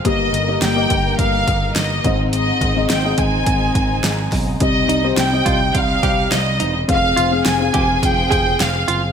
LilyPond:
<<
  \new Staff \with { instrumentName = "Violin section" } { \time 4/4 \key aes \lydian \tempo 4 = 105 ees''4 g''4 f''4 ees''8. r16 | ees''4 g''8 aes''2 r8 | ees''4 g''4 f''4 ees''8. r16 | f''4 aes''4 g''4 f''8. r16 | }
  \new Staff \with { instrumentName = "Felt piano" } { \time 4/4 \key aes \lydian <bes g' ees''>8. <bes g' ees''>8 <bes g' ees''>4.~ <bes g' ees''>16 r8 <c' aes' ees''>8~ | <c' aes' ees''>8 r16 <c' aes' ees''>8 <c' aes' ees''>4.~ <c' aes' ees''>16 r4 | <c' g' ees''>8. <c' g' c''>8 <c' g' ees''>4.~ <c' g' ees''>16 r4 | <c' aes' f''>8. <c' aes' f''>8 <c' aes' f''>4.~ <c' aes' f''>16 r4 | }
  \new Staff \with { instrumentName = "Felt piano" } { \clef bass \time 4/4 \key aes \lydian g,4. r2 aes,8~ | aes,4 r2. | c4. r2 r8 | r1 | }
  \new Staff \with { instrumentName = "Clean electric guitar" } { \time 4/4 \key aes \lydian r1 | r1 | r8 ees'16 r8. f'16 r8. g'8 r8 ees'16 r16 | r8 f'16 r8. g'16 r8. aes'8 r8 f'16 r16 | }
  \new Staff \with { instrumentName = "String section" } { \time 4/4 \key aes \lydian <g ees' bes'>2.~ <g ees' bes'>8 <aes c'>8~ | <aes c'>1 | <c g>1 | <f c' aes'>1 | }
  \new Staff \with { instrumentName = "Picked electric bass" } { \clef bass \time 4/4 \key aes \lydian g,,8 g,,8 g,,8 g,,8 g,,8 g,,8 g,,8 aes,,8~ | aes,,8 aes,,8 aes,,8 aes,,8 aes,,8 aes,,8 aes,,8 ces,8 | c,8 c,8 c,8 c,8 c,8 c,8 c,8 fes,,8 | f,,8 f,,8 f,,8 f,,8 f,,8 f,,8 f,,8 ges,,8 | }
  \new DrumStaff \with { instrumentName = "Drums" } \drummode { \time 4/4 <hh bd>8 hh8 <hh sn>8 <hh bd>8 <hh bd>8 <hh bd>8 <hh sn>8 <hh bd>8 | hh8 <hh bd>8 <hh sn>8 <hh bd>8 <hh bd>8 <hh bd>8 <hh sn>8 <hho bd sn>8 | <hh bd>8 hh8 <hh sn>8 <hh bd>8 <hh bd>8 <hh bd>8 <hh sn>8 hh8 | <hh bd>8 hh8 <hh sn>8 <hh bd>8 <hh bd>8 <hh bd>8 <hh sn>8 hh8 | }
>>